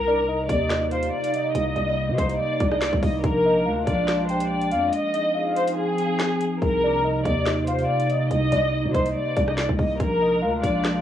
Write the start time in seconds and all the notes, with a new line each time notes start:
Already playing: C2 C3 G3 A#3 D#4 A#4
0.07 D5
0.28 D#5
0.49 D#2 D5, kick, closed hi-hat
0.70 snare, clap, closed hi-hat
0.91 C5 F5, closed hi-hat
1.03 closed hi-hat
1.13 D5
1.24 closed hi-hat
1.34 D#5, closed hi-hat
1.55 C2 D#5, closed hi-hat
1.76 C2 D5, closed hi-hat
1.97 D#5
2.08 C3
2.18 C2 C5, kick, closed hi-hat
2.29 closed hi-hat
2.39 D5
2.60 C2 D5, kick, closed hi-hat
2.72 D#5, cross-stick
2.81 D5, snare, clap, closed hi-hat
2.93 C2, kick
3.03 C2 D#5, kick, open hi-hat
3.24 A#1 G#3 D4 A#4, kick, closed hi-hat
3.46 D#5
3.66 D2 F5
3.87 A#1 D5, kick, closed hi-hat
4.08 snare, clap, closed hi-hat
4.29 C5 G5, closed hi-hat
4.41 closed hi-hat
4.50 D5
4.62 closed hi-hat
4.72 F2 F5, closed hi-hat
4.93 F3 C4 D#4 G#4 D#5, closed hi-hat
5.14 D#5, closed hi-hat
5.35 F5
5.56 C5, closed hi-hat
5.67 closed hi-hat
5.77 G#4
5.98 closed hi-hat
6.20 snare, clap, closed hi-hat
6.41 closed hi-hat
6.62 C2 C3 G3 A#3 A#4, kick, closed hi-hat
6.83 D5
7.04 D#5
7.25 D#2 D5, kick, closed hi-hat
7.46 snare, clap, closed hi-hat
7.67 C5 F5, closed hi-hat
7.79 closed hi-hat
7.89 D5
8.00 closed hi-hat
8.10 D#5, closed hi-hat
8.31 C2 D#5, closed hi-hat
8.52 C2 D5, closed hi-hat
8.73 D#5
8.84 C3
8.94 C2 C5, kick, closed hi-hat
9.05 closed hi-hat
9.15 D5
9.36 C2 D5, kick, closed hi-hat
9.48 D#5, cross-stick
9.58 D5, snare, clap, closed hi-hat
9.69 C2, kick
9.79 C2 D#5, kick, open hi-hat
10.00 A#1 G#3 D4 A#4, kick, closed hi-hat
10.22 D#5
10.42 D2 F5
10.63 A#1 D5, kick, closed hi-hat
10.84 snare, clap, closed hi-hat